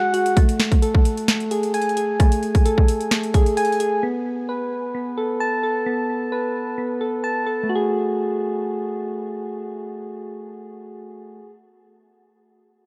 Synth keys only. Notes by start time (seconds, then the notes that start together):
Already playing: G#3 F#4 G#4 F#5
0.14 F#4
0.37 A3
0.82 A4
1.28 A3
1.51 G#4
1.74 G#5
1.97 G#4
2.20 A3
2.66 A4
3.11 A3
3.34 G#4
3.57 G#5
3.80 G#4
4.03 B3
4.49 B4
4.95 B3
5.18 A4
5.40 A5
5.63 A4
5.86 B3
6.32 B4
6.78 B3
7.01 A4
7.24 A5
7.46 A4
7.63 A3
7.69 F#4
7.75 G#4